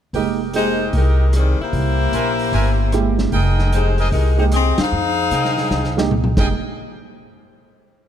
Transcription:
0.13 upright bass F1, upright piano G#3 A#3 D#4 G4, trumpet section G4 A#4 D#5 G5, kick, open hi-hat
0.54 upright piano G#3 A#3 D#4 G4, saxophone section G#3 D#4 G4 C5, closed hi-hat
0.93 upright bass C2, saxophone section G#3 D#4 G4 A#4, kick, open hi-hat
1.33 saxophone section D#3 G3 C4 G#4, cross-stick, closed hi-hat
1.60 saxophone section A#3 E4 G4 C5, muted upright bass stroke
1.73 upright bass C2, kick, open hi-hat
2.12 upright bass A#1, trumpet section A#4 C5 E5 G#5, closed hi-hat
2.39 open hi-hat
2.52 upright bass G1, trumpet section A#4 C5 E5 G#5, kick, open hi-hat
2.92 upright piano G#3 A#3 E4 G4, cross-stick, closed hi-hat
3.18 snare
3.32 upright bass F1, trumpet section G#4 A#4 D#5 G5, kick, open hi-hat
3.59 snare
3.73 saxophone section G#3 D#4 G4 C5, closed hi-hat
3.98 trumpet section G#4 A#4 D#5 G5, open hi-hat
4.12 upright bass C2, saxophone section G#3 D#4 G4 A#4, kick, open hi-hat
4.38 upright piano G#3 A#3 D#4 G4, saxophone section G#3 D#4 G4 C5
4.52 saxophone section C4 G4 G#4 D#5, cross-stick, closed hi-hat
4.78 saxophone section D#4 G#4 C5 F5, muted upright bass stroke, snare, ride
4.92 upright bass F2
5.31 upright bass C3, trumpet section G#4 A#4 D#5 G5, closed hi-hat
5.45 snare
5.57 snare, open hi-hat
5.70 upright bass C2, snare
5.84 snare
5.97 upright piano G#3 A#3 D#4 G4, snare
6.11 mid tom
6.24 mid tom
6.37 upright bass F1, upright piano G#3 A#3 D#4 G4, trumpet section G#4 A#4 D#5 G5, kick, snare, crash

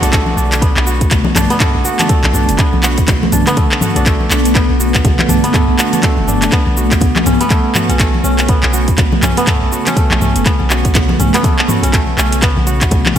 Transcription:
Already playing: ambient pad D3 A3 B3, kora A3 B3 F#4, downlifter
0.02 808-style bass B1, kora D4, closed hi-hat, shaker
0.12 kora A3, kick, clap, closed hi-hat, shaker
0.26 high conga
0.37 808-style bass B1, kora D4, shaker
0.52 clap, closed hi-hat, shaker
0.61 kora B3, kick, closed hi-hat, shaker
0.76 808-style bass B1, clap
0.86 kora F#4, shaker
1.01 kick, closed hi-hat, shaker
1.11 kick, clap, closed hi-hat, low conga, shaker
1.25 high conga
1.35 808-style bass B1, kora D4, clap, closed hi-hat, mid tom, high conga, shaker
1.50 kora B3, closed hi-hat, shaker
1.60 kora A3, kick, clap, closed hi-hat, mid tom, shaker
1.75 808-style bass B1
1.85 kora F#4, shaker
1.99 kora D4, clap, closed hi-hat, high conga, shaker
2.09 kora A3, kick, closed hi-hat, shaker
2.24 808-style bass B1, clap, high conga
2.33 808-style bass B1, kora D4, mid tom, high conga, shaker
2.48 808-style bass F#1, closed hi-hat, shaker
2.58 kora B3, kick, clap, closed hi-hat, shaker
2.73 808-style bass B1, high conga
2.83 kora F#4, clap, shaker
2.98 kick, closed hi-hat, shaker
3.08 kick, clap, closed hi-hat, low conga, shaker
3.23 high conga
3.32 808-style bass B1, kora D4, closed hi-hat, mid tom, high conga, shaker
3.47 kora B3, clap, closed hi-hat, shaker
3.57 kora A3, kick, closed hi-hat, high conga, shaker
3.72 clap
3.81 kora F#4, mid tom, high conga, shaker
3.96 808-style bass B1, kora D4, closed hi-hat, shaker
4.06 kora A3, kick, clap, closed hi-hat, shaker
4.21 high conga
4.30 808-style bass B1, kora D4, clap, shaker
4.45 closed hi-hat, shaker
4.55 kora B3, kick, clap, closed hi-hat, shaker
4.69 808-style bass B1
4.80 kora F#4, shaker
4.95 kick, clap, closed hi-hat, shaker
5.05 kick, closed hi-hat, low conga, shaker
5.19 clap, high conga
5.29 808-style bass B1, kora D4, closed hi-hat, mid tom, high conga, shaker
5.44 kora B3, closed hi-hat, shaker
5.54 kora A3, kick, clap, closed hi-hat, mid tom, shaker
5.68 808-style bass B1
5.78 kora F#4, clap, closed hi-hat, shaker
5.93 kora D4, closed hi-hat, high conga, shaker
6.03 kora A3, kick, clap, closed hi-hat, shaker
6.17 808-style bass F#1, high conga
6.27 kora D4, mid tom, high conga, shaker
6.42 clap, closed hi-hat, shaker
6.52 ambient pad C#3, kora B3, kick, clap, closed hi-hat, shaker
6.66 808-style bass B1, high conga
6.77 kora F#4, shaker
6.91 kick, clap, closed hi-hat, shaker
7.01 kick, closed hi-hat, low conga, shaker
7.16 clap, high conga
7.26 808-style bass B1, kora C#4, closed hi-hat, mid tom, high conga, shaker
7.41 kora B3, closed hi-hat, shaker
7.50 kora A3, kick, clap, closed hi-hat, high conga, shaker
7.75 kora F#4, clap, mid tom, high conga, shaker
7.89 808-style bass B1, kora C#4, closed hi-hat, shaker
8.00 kora A3, kick, clap, closed hi-hat, shaker
8.14 high conga
8.24 808-style bass B1, kora C#4, shaker
8.39 clap, closed hi-hat, shaker
8.48 kora B3, kick, closed hi-hat, shaker
8.63 808-style bass B1, clap
8.73 kora F#4, shaker
8.88 kick, closed hi-hat, shaker
8.98 kick, clap, closed hi-hat, low conga, shaker
9.13 high conga
9.22 808-style bass B1, kora C#4, clap, closed hi-hat, mid tom, high conga, shaker
9.37 kora B3, closed hi-hat, shaker
9.47 kora A3, kick, clap, closed hi-hat, mid tom, shaker
9.62 808-style bass B1
9.72 kora F#4, shaker
9.87 kora C#4, clap, closed hi-hat, high conga, shaker
9.96 kora A3, kick, closed hi-hat, shaker
10.11 808-style bass B1, clap, high conga
10.21 808-style bass B1, kora C#4, mid tom, high conga, shaker
10.35 808-style bass F#1, closed hi-hat, shaker
10.46 kora B3, kick, clap, closed hi-hat, shaker
10.60 808-style bass B1, high conga
10.70 kora F#4, clap, shaker
10.85 kick, closed hi-hat, shaker
10.95 kick, clap, closed hi-hat, low conga, shaker
11.09 high conga
11.19 808-style bass B1, kora C#4, closed hi-hat, mid tom, high conga, shaker
11.34 kora B3, clap, closed hi-hat, shaker
11.43 kora A3, kick, closed hi-hat, high conga, shaker
11.59 clap
11.68 kora F#4, mid tom, high conga, shaker
11.83 808-style bass B1, kora C#4, closed hi-hat, shaker
11.93 kora A3, kick, clap, closed hi-hat, shaker
12.07 high conga
12.17 808-style bass B1, kora C#4, clap, shaker
12.32 closed hi-hat, shaker
12.42 kora B3, kick, clap, closed hi-hat, shaker
12.57 808-style bass B1, high conga
12.67 kora F#4, closed hi-hat, shaker
12.81 kick, clap, closed hi-hat, shaker
12.91 kick, closed hi-hat, low conga, shaker
13.06 clap, high conga

